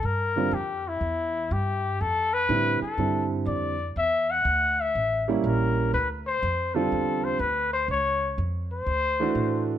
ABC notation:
X:1
M:4/4
L:1/8
Q:"Swing" 1/4=122
K:Ddor
V:1 name="Trumpet"
_B2 G E3 G2 | A B2 A2 z d2 | e ^f2 e2 z _B2 | B c2 A2 c B c |
_d2 z c4 z |]
V:2 name="Grand piano"
z [D,G,CF] z6 | z2 [D,G,CE] z [D,G,CE]3 z | z4 z [G,_B,^CE]3 | z3 [D,G,CF]3 z2 |
z4 z [E,A,D^F]3 |]
V:3 name="Upright bass" clef=bass
G,,2 F,,2 E,,2 G,,2 | F,,2 A,, z G,,2 F,,2 | E,,2 D,,2 A,,,2 _B,,,2 | D,,2 F,,2 E,,2 D,,2 |
_D,,2 F,,2 =D,,2 A,,2 |]